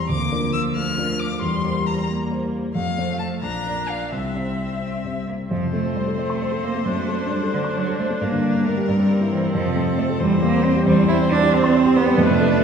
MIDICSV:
0, 0, Header, 1, 5, 480
1, 0, Start_track
1, 0, Key_signature, -1, "major"
1, 0, Tempo, 444774
1, 99, Time_signature, 6, 3, 24, 8
1, 3461, Tempo, 458716
1, 6821, Tempo, 444444
1, 13540, End_track
2, 0, Start_track
2, 0, Title_t, "Violin"
2, 0, Program_c, 0, 40
2, 103, Note_on_c, 0, 86, 71
2, 568, Note_off_c, 0, 86, 0
2, 573, Note_on_c, 0, 88, 66
2, 659, Note_off_c, 0, 88, 0
2, 817, Note_on_c, 0, 89, 70
2, 1286, Note_on_c, 0, 86, 71
2, 1302, Note_off_c, 0, 89, 0
2, 1523, Note_off_c, 0, 86, 0
2, 1529, Note_on_c, 0, 84, 69
2, 2014, Note_on_c, 0, 82, 59
2, 2030, Note_off_c, 0, 84, 0
2, 2256, Note_off_c, 0, 82, 0
2, 2970, Note_on_c, 0, 77, 58
2, 3424, Note_off_c, 0, 77, 0
2, 3441, Note_on_c, 0, 81, 52
2, 3526, Note_off_c, 0, 81, 0
2, 3677, Note_on_c, 0, 82, 55
2, 4173, Note_on_c, 0, 77, 48
2, 4189, Note_off_c, 0, 82, 0
2, 4418, Note_off_c, 0, 77, 0
2, 4422, Note_on_c, 0, 76, 45
2, 5610, Note_off_c, 0, 76, 0
2, 5868, Note_on_c, 0, 72, 50
2, 8759, Note_on_c, 0, 70, 56
2, 8775, Note_off_c, 0, 72, 0
2, 10183, Note_off_c, 0, 70, 0
2, 10190, Note_on_c, 0, 69, 58
2, 10905, Note_on_c, 0, 72, 60
2, 10921, Note_off_c, 0, 69, 0
2, 11625, Note_off_c, 0, 72, 0
2, 11630, Note_on_c, 0, 72, 70
2, 12302, Note_off_c, 0, 72, 0
2, 12333, Note_on_c, 0, 72, 69
2, 13038, Note_on_c, 0, 71, 68
2, 13054, Note_off_c, 0, 72, 0
2, 13540, Note_off_c, 0, 71, 0
2, 13540, End_track
3, 0, Start_track
3, 0, Title_t, "Grand piano"
3, 0, Program_c, 1, 0
3, 0, Control_c, 1, 64, 127
3, 0, Note_on_c, 1, 40, 53
3, 0, Note_on_c, 1, 60, 36
3, 0, Note_on_c, 1, 67, 36
3, 0, Note_on_c, 1, 72, 42
3, 99, Note_on_c, 1, 38, 49
3, 121, Control_c, 1, 64, 0
3, 122, Note_off_c, 1, 67, 0
3, 124, Note_off_c, 1, 40, 0
3, 125, Note_off_c, 1, 72, 0
3, 133, Note_off_c, 1, 60, 0
3, 276, Control_c, 1, 64, 127
3, 330, Note_off_c, 1, 38, 0
3, 341, Note_on_c, 1, 62, 36
3, 343, Note_on_c, 1, 65, 38
3, 349, Note_on_c, 1, 70, 38
3, 1016, Note_off_c, 1, 62, 0
3, 1017, Note_off_c, 1, 65, 0
3, 1020, Note_off_c, 1, 70, 0
3, 1056, Note_on_c, 1, 62, 39
3, 1057, Note_on_c, 1, 65, 37
3, 1061, Note_on_c, 1, 70, 39
3, 1493, Note_off_c, 1, 62, 0
3, 1493, Note_off_c, 1, 65, 0
3, 1495, Note_off_c, 1, 70, 0
3, 1531, Note_on_c, 1, 40, 48
3, 1558, Control_c, 1, 64, 0
3, 1711, Control_c, 1, 64, 127
3, 1766, Note_off_c, 1, 40, 0
3, 1772, Note_on_c, 1, 58, 33
3, 1776, Note_on_c, 1, 67, 33
3, 1778, Note_on_c, 1, 72, 36
3, 2452, Note_off_c, 1, 58, 0
3, 2454, Note_off_c, 1, 67, 0
3, 2455, Note_off_c, 1, 72, 0
3, 2489, Note_on_c, 1, 58, 34
3, 2495, Note_on_c, 1, 67, 35
3, 2497, Note_on_c, 1, 72, 37
3, 2930, Note_off_c, 1, 58, 0
3, 2933, Note_off_c, 1, 67, 0
3, 2934, Note_off_c, 1, 72, 0
3, 2971, Note_on_c, 1, 41, 43
3, 2997, Control_c, 1, 64, 0
3, 3186, Control_c, 1, 64, 127
3, 3209, Note_off_c, 1, 41, 0
3, 3213, Note_on_c, 1, 57, 30
3, 3220, Note_on_c, 1, 65, 31
3, 3221, Note_on_c, 1, 72, 33
3, 3653, Note_off_c, 1, 57, 0
3, 3657, Note_off_c, 1, 65, 0
3, 3657, Note_off_c, 1, 72, 0
3, 3691, Note_on_c, 1, 34, 36
3, 3719, Control_c, 1, 64, 0
3, 3917, Control_c, 1, 64, 127
3, 3926, Note_off_c, 1, 34, 0
3, 3933, Note_on_c, 1, 58, 27
3, 3941, Note_on_c, 1, 65, 26
3, 3944, Note_on_c, 1, 74, 30
3, 4376, Note_off_c, 1, 58, 0
3, 4380, Note_off_c, 1, 65, 0
3, 4382, Note_off_c, 1, 74, 0
3, 4417, Note_on_c, 1, 36, 34
3, 4442, Control_c, 1, 64, 0
3, 4622, Control_c, 1, 64, 127
3, 4654, Note_off_c, 1, 36, 0
3, 4658, Note_on_c, 1, 55, 24
3, 4662, Note_on_c, 1, 60, 24
3, 4665, Note_on_c, 1, 72, 26
3, 5346, Note_off_c, 1, 55, 0
3, 5348, Note_off_c, 1, 60, 0
3, 5349, Note_off_c, 1, 72, 0
3, 5387, Note_on_c, 1, 55, 24
3, 5396, Note_on_c, 1, 60, 25
3, 5396, Note_on_c, 1, 72, 26
3, 5830, Note_off_c, 1, 55, 0
3, 5834, Note_off_c, 1, 60, 0
3, 5834, Note_off_c, 1, 72, 0
3, 5873, Note_on_c, 1, 41, 49
3, 5894, Control_c, 1, 64, 0
3, 5991, Note_on_c, 1, 48, 35
3, 6071, Control_c, 1, 64, 127
3, 6102, Note_on_c, 1, 57, 38
3, 6182, Note_off_c, 1, 48, 0
3, 6219, Note_on_c, 1, 60, 39
3, 6297, Note_off_c, 1, 57, 0
3, 6341, Note_on_c, 1, 72, 41
3, 6415, Note_off_c, 1, 60, 0
3, 6460, Note_on_c, 1, 69, 42
3, 6534, Note_off_c, 1, 72, 0
3, 6576, Note_on_c, 1, 72, 42
3, 6652, Note_off_c, 1, 69, 0
3, 6696, Note_on_c, 1, 84, 45
3, 6768, Note_off_c, 1, 72, 0
3, 6819, Note_on_c, 1, 72, 43
3, 6888, Note_off_c, 1, 84, 0
3, 6931, Note_on_c, 1, 69, 42
3, 7012, Note_off_c, 1, 72, 0
3, 7128, Note_off_c, 1, 69, 0
3, 7182, Note_on_c, 1, 57, 38
3, 7258, Note_off_c, 1, 41, 0
3, 7295, Note_on_c, 1, 42, 49
3, 7301, Note_off_c, 1, 57, 0
3, 7321, Control_c, 1, 64, 0
3, 7428, Note_on_c, 1, 54, 36
3, 7518, Control_c, 1, 64, 127
3, 7540, Note_on_c, 1, 57, 37
3, 7617, Note_off_c, 1, 54, 0
3, 7668, Note_on_c, 1, 62, 41
3, 7733, Note_off_c, 1, 57, 0
3, 7786, Note_on_c, 1, 72, 47
3, 7858, Note_off_c, 1, 62, 0
3, 7912, Note_on_c, 1, 69, 44
3, 7978, Note_off_c, 1, 72, 0
3, 8026, Note_on_c, 1, 74, 42
3, 8101, Note_off_c, 1, 69, 0
3, 8145, Note_on_c, 1, 84, 46
3, 8218, Note_off_c, 1, 74, 0
3, 8268, Note_on_c, 1, 74, 46
3, 8338, Note_off_c, 1, 84, 0
3, 8398, Note_on_c, 1, 69, 43
3, 8459, Note_off_c, 1, 74, 0
3, 8518, Note_on_c, 1, 72, 46
3, 8585, Note_off_c, 1, 69, 0
3, 8641, Note_on_c, 1, 57, 40
3, 8702, Note_off_c, 1, 42, 0
3, 8705, Note_off_c, 1, 72, 0
3, 8755, Note_off_c, 1, 57, 0
3, 8759, Note_on_c, 1, 43, 54
3, 8770, Control_c, 1, 64, 0
3, 8876, Note_on_c, 1, 50, 37
3, 8931, Control_c, 1, 64, 127
3, 9003, Note_on_c, 1, 55, 42
3, 9065, Note_off_c, 1, 50, 0
3, 9122, Note_on_c, 1, 62, 44
3, 9188, Note_off_c, 1, 55, 0
3, 9243, Note_on_c, 1, 70, 50
3, 9307, Note_off_c, 1, 62, 0
3, 9363, Note_on_c, 1, 67, 48
3, 9427, Note_off_c, 1, 70, 0
3, 9452, Note_off_c, 1, 43, 0
3, 9476, Note_off_c, 1, 67, 0
3, 9484, Note_on_c, 1, 43, 53
3, 9487, Control_c, 1, 64, 0
3, 9606, Note_on_c, 1, 55, 45
3, 9656, Control_c, 1, 64, 127
3, 9728, Note_on_c, 1, 58, 43
3, 9789, Note_off_c, 1, 55, 0
3, 9839, Note_on_c, 1, 64, 47
3, 9910, Note_off_c, 1, 58, 0
3, 9960, Note_on_c, 1, 72, 50
3, 10026, Note_off_c, 1, 64, 0
3, 10081, Note_on_c, 1, 70, 52
3, 10147, Note_off_c, 1, 72, 0
3, 10176, Note_off_c, 1, 43, 0
3, 10195, Note_off_c, 1, 70, 0
3, 10203, Note_on_c, 1, 41, 60
3, 10209, Control_c, 1, 64, 0
3, 10323, Note_on_c, 1, 48, 41
3, 10366, Control_c, 1, 64, 127
3, 10430, Note_on_c, 1, 57, 46
3, 10507, Note_off_c, 1, 48, 0
3, 10550, Note_on_c, 1, 60, 49
3, 10620, Note_off_c, 1, 57, 0
3, 10671, Note_on_c, 1, 72, 59
3, 10739, Note_off_c, 1, 60, 0
3, 10795, Note_on_c, 1, 69, 52
3, 10859, Note_off_c, 1, 72, 0
3, 10890, Note_off_c, 1, 41, 0
3, 10910, Note_off_c, 1, 69, 0
3, 10911, Note_on_c, 1, 40, 65
3, 10926, Control_c, 1, 64, 0
3, 11024, Note_on_c, 1, 52, 52
3, 11096, Control_c, 1, 64, 127
3, 11142, Note_on_c, 1, 55, 51
3, 11217, Note_off_c, 1, 52, 0
3, 11263, Note_on_c, 1, 60, 53
3, 11336, Note_off_c, 1, 55, 0
3, 11384, Note_on_c, 1, 72, 54
3, 11456, Note_off_c, 1, 60, 0
3, 11509, Note_on_c, 1, 67, 58
3, 11576, Note_off_c, 1, 72, 0
3, 11604, Note_off_c, 1, 40, 0
3, 11620, Note_on_c, 1, 40, 71
3, 11627, Note_off_c, 1, 67, 0
3, 11644, Control_c, 1, 64, 0
3, 11737, Note_on_c, 1, 52, 45
3, 11792, Control_c, 1, 64, 127
3, 11852, Note_on_c, 1, 55, 58
3, 11932, Note_off_c, 1, 52, 0
3, 11988, Note_on_c, 1, 60, 58
3, 12050, Note_off_c, 1, 55, 0
3, 12102, Note_on_c, 1, 72, 65
3, 12178, Note_off_c, 1, 60, 0
3, 12229, Note_on_c, 1, 67, 61
3, 12294, Note_off_c, 1, 72, 0
3, 12337, Note_on_c, 1, 72, 60
3, 12416, Note_off_c, 1, 67, 0
3, 12458, Note_on_c, 1, 84, 66
3, 12530, Note_off_c, 1, 72, 0
3, 12574, Note_on_c, 1, 72, 63
3, 12650, Note_off_c, 1, 84, 0
3, 12696, Note_on_c, 1, 67, 63
3, 12768, Note_off_c, 1, 72, 0
3, 12811, Note_on_c, 1, 72, 60
3, 12889, Note_off_c, 1, 67, 0
3, 12930, Note_on_c, 1, 55, 59
3, 13006, Note_off_c, 1, 72, 0
3, 13013, Note_off_c, 1, 40, 0
3, 13043, Note_on_c, 1, 41, 74
3, 13054, Note_off_c, 1, 55, 0
3, 13079, Control_c, 1, 64, 0
3, 13171, Note_on_c, 1, 48, 55
3, 13250, Control_c, 1, 64, 127
3, 13289, Note_on_c, 1, 57, 57
3, 13367, Note_off_c, 1, 48, 0
3, 13414, Note_on_c, 1, 62, 60
3, 13486, Note_off_c, 1, 57, 0
3, 13540, Note_off_c, 1, 41, 0
3, 13540, Note_off_c, 1, 62, 0
3, 13540, End_track
4, 0, Start_track
4, 0, Title_t, "Viola"
4, 0, Program_c, 2, 41
4, 107, Note_on_c, 2, 58, 45
4, 825, Note_on_c, 2, 57, 47
4, 841, Note_off_c, 2, 58, 0
4, 1529, Note_off_c, 2, 57, 0
4, 1535, Note_on_c, 2, 55, 41
4, 2249, Note_on_c, 2, 58, 44
4, 2265, Note_off_c, 2, 55, 0
4, 2973, Note_off_c, 2, 58, 0
4, 2977, Note_on_c, 2, 57, 38
4, 3700, Note_on_c, 2, 62, 38
4, 3716, Note_off_c, 2, 57, 0
4, 4420, Note_on_c, 2, 60, 33
4, 4436, Note_off_c, 2, 62, 0
4, 5660, Note_off_c, 2, 60, 0
4, 5869, Note_on_c, 2, 60, 44
4, 7299, Note_on_c, 2, 62, 47
4, 7316, Note_off_c, 2, 60, 0
4, 9477, Note_on_c, 2, 60, 59
4, 9494, Note_off_c, 2, 62, 0
4, 11626, Note_off_c, 2, 60, 0
4, 11632, Note_on_c, 2, 60, 66
4, 13018, Note_off_c, 2, 60, 0
4, 13060, Note_on_c, 2, 62, 67
4, 13540, Note_off_c, 2, 62, 0
4, 13540, End_track
5, 0, Start_track
5, 0, Title_t, "Cello"
5, 0, Program_c, 3, 42
5, 107, Note_on_c, 3, 53, 52
5, 1524, Note_on_c, 3, 55, 46
5, 1540, Note_off_c, 3, 53, 0
5, 2219, Note_off_c, 3, 55, 0
5, 2226, Note_on_c, 3, 55, 44
5, 2947, Note_off_c, 3, 55, 0
5, 2970, Note_on_c, 3, 53, 44
5, 3653, Note_off_c, 3, 53, 0
5, 3698, Note_on_c, 3, 53, 41
5, 4405, Note_off_c, 3, 53, 0
5, 4419, Note_on_c, 3, 55, 30
5, 5085, Note_off_c, 3, 55, 0
5, 5144, Note_on_c, 3, 60, 43
5, 5371, Note_off_c, 3, 60, 0
5, 5386, Note_on_c, 3, 55, 37
5, 5470, Note_off_c, 3, 55, 0
5, 5625, Note_on_c, 3, 58, 32
5, 5709, Note_off_c, 3, 58, 0
5, 5862, Note_on_c, 3, 53, 69
5, 6088, Note_off_c, 3, 53, 0
5, 6106, Note_on_c, 3, 57, 62
5, 6335, Note_on_c, 3, 55, 64
5, 6350, Note_off_c, 3, 57, 0
5, 6560, Note_off_c, 3, 55, 0
5, 6566, Note_on_c, 3, 57, 70
5, 7052, Note_on_c, 3, 58, 66
5, 7068, Note_off_c, 3, 57, 0
5, 7285, Note_off_c, 3, 58, 0
5, 7292, Note_on_c, 3, 57, 66
5, 7776, Note_on_c, 3, 55, 68
5, 7792, Note_off_c, 3, 57, 0
5, 8021, Note_off_c, 3, 55, 0
5, 8025, Note_on_c, 3, 50, 68
5, 8112, Note_off_c, 3, 50, 0
5, 8276, Note_on_c, 3, 54, 75
5, 8507, Note_off_c, 3, 54, 0
5, 8512, Note_on_c, 3, 57, 70
5, 8598, Note_off_c, 3, 57, 0
5, 8748, Note_on_c, 3, 58, 74
5, 9222, Note_on_c, 3, 57, 71
5, 9238, Note_off_c, 3, 58, 0
5, 9462, Note_off_c, 3, 57, 0
5, 9468, Note_on_c, 3, 55, 78
5, 9939, Note_off_c, 3, 55, 0
5, 9944, Note_on_c, 3, 52, 80
5, 10182, Note_off_c, 3, 52, 0
5, 10188, Note_on_c, 3, 53, 79
5, 10657, Note_off_c, 3, 53, 0
5, 10662, Note_on_c, 3, 57, 83
5, 10748, Note_off_c, 3, 57, 0
5, 10909, Note_on_c, 3, 55, 97
5, 11142, Note_off_c, 3, 55, 0
5, 11151, Note_on_c, 3, 58, 92
5, 11381, Note_on_c, 3, 60, 100
5, 11397, Note_off_c, 3, 58, 0
5, 11611, Note_off_c, 3, 60, 0
5, 11617, Note_on_c, 3, 55, 101
5, 11853, Note_off_c, 3, 55, 0
5, 11859, Note_on_c, 3, 64, 99
5, 11946, Note_off_c, 3, 64, 0
5, 12096, Note_on_c, 3, 62, 99
5, 12341, Note_on_c, 3, 60, 105
5, 12357, Note_off_c, 3, 62, 0
5, 12805, Note_on_c, 3, 59, 104
5, 12822, Note_off_c, 3, 60, 0
5, 13050, Note_on_c, 3, 57, 122
5, 13066, Note_off_c, 3, 59, 0
5, 13540, Note_off_c, 3, 57, 0
5, 13540, End_track
0, 0, End_of_file